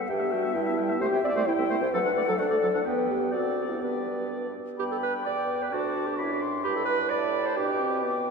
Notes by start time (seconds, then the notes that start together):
0.08 G2 G3 G4 E5 G5
0.20 B3 E5
0.31 G3 F#4 G5
0.43 B3 E5
0.54 G2 G3 E4 G5
0.66 B3 E5
0.78 G3 G5
0.90 B3 E5
1.00 C2 A3 G4 C5 E5
1.12 C2 E4 G5
1.24 C2 C4 D5 E5
1.35 C2 A3 C5
1.45 C2 E4 G5
1.58 C2 C4 E5
1.70 C2 A3 C5
1.81 C2 E4 C5 G5
1.92 D2 F#3 A4 B4 F#5
2.04 D2 D4 F#5
2.16 D2 A3 D5
2.27 D2 F#3 A4
2.39 D2 D4 A4 D5 F#5
2.51 D2 A3 D5
2.62 D2 F#3 A4
2.74 D2 D4 F#5
2.85 E2 B3 B4 G5
3.09 G4
3.32 D2 C4 F#4 D5
3.70 E4
3.82 G2 B3 G4 B4 D5
4.78 G2 B3 G4 G5 B5
4.91 A4
5.03 B4
5.25 E2 B3 D5 D6
5.62 B4
5.71 D2 D4 F#4 A5 D6
6.05 G4
6.15 F#4 B5 D6
6.19 F#2 E4
6.32 F#4
6.42 C6
6.64 G2 E4 G4 B5
6.76 A4
6.85 B4
7.10 A2 D5 A5 B5
7.46 C5
7.56 B2 D4 G4 G5 D6
7.80 C4
8.02 B3 G5 D6